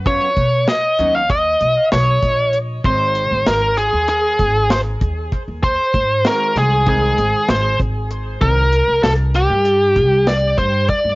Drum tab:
HH |xxxxxxxxx|xxxxxxxxx|xxxxxxxxx|xxxxxxxxx|
SD |--o-o-o--|--o---o--|--oo--o--|--oo--o--|
BD |oo--o--o-|o----o-oo|oo--o--o-|o----o-oo|